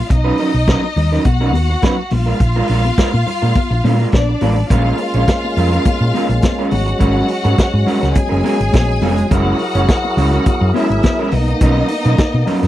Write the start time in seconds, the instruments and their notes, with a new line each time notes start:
0.10 fingered electric bass B1, string section D#4 D#5, muted clean electric guitar stroke, kick, closed hi-hat
0.24 clean electric guitar F#3 C#4 D#4 B4
0.38 clean electric guitar F#3 C#4 D#4 A#4, open hi-hat
0.54 fingered electric bass B1, muted clean electric guitar stroke
0.68 clean electric guitar F#3 C#4 D#4 A#4, kick, snare, closed hi-hat
0.83 muted clean electric guitar stroke, muted conga
0.96 fingered electric bass D#2, muted clean electric guitar stroke, open hi-hat, low conga
1.12 clean electric guitar F#3 C#4 D#4 A#4, snare
1.25 fingered electric bass B1, string section F#4 F#5, muted clean electric guitar stroke, kick, closed hi-hat, muted conga, high conga
1.40 clean electric guitar F#3 C#4 D#4 A#4, muted conga
1.53 fingered electric bass D#2, muted clean electric guitar stroke, open hi-hat, high conga
1.70 muted clean electric guitar stroke
1.82 clean electric guitar F#3 C#4 D#4 B4, kick, snare, closed hi-hat, muted conga, high conga
1.97 muted clean electric guitar stroke, muted conga
2.11 fingered electric bass A#1, string section F4 F5, muted clean electric guitar stroke, open hi-hat, high conga, low conga
2.26 clean electric guitar G#3 D4 F4 A#4
2.40 fingered electric bass A#1, muted clean electric guitar stroke, kick, closed hi-hat, muted conga
2.56 clean electric guitar G#3 D4 F4 A#4, muted conga
2.68 fingered electric bass A#1, clean electric guitar G#3 D4 F4 A#4, open hi-hat
2.85 muted clean electric guitar stroke, high conga
2.98 clean electric guitar G#3 D4 F4 A#4, muted fingered electric bass stroke, kick, snare, closed hi-hat
3.13 fingered electric bass A#2, muted clean electric guitar stroke, muted conga
3.27 muted clean electric guitar stroke, open hi-hat, low conga
3.42 fingered electric bass A#2, clean electric guitar G#3 D4 F4 A#4
3.55 muted clean electric guitar stroke, kick, closed hi-hat, muted conga, high conga
3.71 fingered electric bass A#1, muted clean electric guitar stroke, muted conga
3.84 fingered electric bass A#2, clean electric guitar G#3 D4 F4 A#4, open hi-hat, high conga
3.99 clean electric guitar G#3 D4 F4 A#4
4.12 fingered electric bass A#1, string section D4 D5, kick, snare, closed hi-hat, high conga
4.29 muted clean electric guitar stroke, muted conga
4.41 fingered electric bass A1, clean electric guitar G#3 D4 F4 A#4, open hi-hat, high conga, low conga
4.57 muted clean electric guitar stroke
4.69 fingered electric bass A#1, clean electric guitar G#3 C#4 F4 A#4, tonewheel organ G#3 A#3 C#4, string section F4 F5, kick, closed hi-hat, muted conga, low conga
4.86 muted conga
4.98 muted clean electric guitar stroke, open hi-hat
5.14 fingered electric bass A#1, clean electric guitar G#3 C#4 F4 C#5, closed hi-hat
5.28 muted clean electric guitar stroke, kick, snare, closed hi-hat, muted conga
5.44 muted clean electric guitar stroke, muted conga
5.57 fingered electric bass F2, clean electric guitar G#3 C#4 F4 A#4, open hi-hat, low conga
5.72 clean electric guitar G#3 C#4 F4 A#4, closed hi-hat
5.85 muted clean electric guitar stroke, kick, closed hi-hat, high conga
6.01 fingered electric bass A#2, muted clean electric guitar stroke, muted conga
6.14 clean electric guitar G#3 C#4 F4 A#4, open hi-hat, high conga
6.29 fingered electric bass A#1, muted clean electric guitar stroke, closed hi-hat
6.42 muted clean electric guitar stroke, kick, snare, closed hi-hat, muted conga, high conga
6.59 clean electric guitar G#3 C#4 F4 A#4, muted conga
6.71 fingered electric bass G#1, tonewheel organ F#3, string section F#4 F#5, muted clean electric guitar stroke, open hi-hat, high conga, low conga
6.86 muted clean electric guitar stroke, closed hi-hat
6.99 fingered electric bass G#1, clean electric guitar G#3 C#4 F#4 A#4, kick, closed hi-hat, muted conga, low conga
7.28 muted clean electric guitar stroke, open hi-hat
7.44 fingered electric bass G#2, clean electric guitar G#3 C#4 F#4 A#4, closed hi-hat
7.57 muted clean electric guitar stroke, kick, snare, closed hi-hat, muted conga
7.74 fingered electric bass G#2, muted clean electric guitar stroke, muted conga
7.86 clean electric guitar G#3 C#4 F#4 A#4, open hi-hat, low conga
8.01 fingered electric bass C#2, clean electric guitar G#3 C#4 F#4 A#4, snare, closed hi-hat
8.14 string section G#4 G#5, muted clean electric guitar stroke, kick, closed hi-hat, high conga
8.29 fingered electric bass F#1, clean electric guitar G#3 C#4 F#4 A#4
8.43 clean electric guitar G#3 C#4 F#4 A#4, open hi-hat, high conga
8.58 fingered electric bass G#1, muted clean electric guitar stroke, closed hi-hat
8.72 fingered electric bass A#1, muted clean electric guitar stroke, kick, snare, closed hi-hat, high conga
8.88 muted clean electric guitar stroke
9.02 fingered electric bass F1, clean electric guitar G#3 C#4 F#4 A#4, open hi-hat, high conga, low conga
9.17 muted clean electric guitar stroke, closed hi-hat
9.30 fingered electric bass F#1, clean electric guitar G#3 C#4 E4 A#4, tonewheel organ E4 G#4 A#4, string section F#4 F#5, kick, closed hi-hat, muted conga, low conga
9.46 muted conga
9.59 muted clean electric guitar stroke, open hi-hat
9.75 fingered electric bass F#1, clean electric guitar G#3 C#4 E4 C#5, closed hi-hat
9.88 muted clean electric guitar stroke, kick, snare, closed hi-hat, muted conga
10.04 muted clean electric guitar stroke, muted conga
10.17 fingered electric bass C#2, clean electric guitar G#3 C#4 E4 A#4, open hi-hat, low conga
10.33 clean electric guitar G#3 C#4 E4 A#4, closed hi-hat
10.46 muted fingered electric bass stroke, muted clean electric guitar stroke, kick, closed hi-hat, high conga
10.61 fingered electric bass F#2, muted clean electric guitar stroke
10.74 clean electric guitar G#3 C#4 E4 A#4, string section E4 E5, open hi-hat, high conga
10.90 fingered electric bass G#1, muted clean electric guitar stroke, closed hi-hat
11.03 muted clean electric guitar stroke, kick, snare, closed hi-hat, high conga
11.19 clean electric guitar G#3 C#4 E4 A#4
11.31 fingered electric bass B1, tonewheel organ A#3 B3 D#4, string section D#4 D#5, muted clean electric guitar stroke, open hi-hat, high conga, low conga
11.48 muted clean electric guitar stroke, closed hi-hat
11.61 fingered electric bass B1, clean electric guitar F#3 C#4 D#4 A#4, kick, closed hi-hat, low conga
11.77 muted conga
11.88 muted clean electric guitar stroke, open hi-hat
12.04 fingered electric bass B2, clean electric guitar F#3 C#4 D#4 A#4, closed hi-hat
12.18 muted clean electric guitar stroke, kick, snare, closed hi-hat, muted conga
12.33 fingered electric bass B2, muted clean electric guitar stroke, muted conga
12.46 clean electric guitar F#3 C#4 D#4 A#4, open hi-hat, low conga
12.62 fingered electric bass F#2, clean electric guitar F#3 C#4 D#4 A#4, snare, closed hi-hat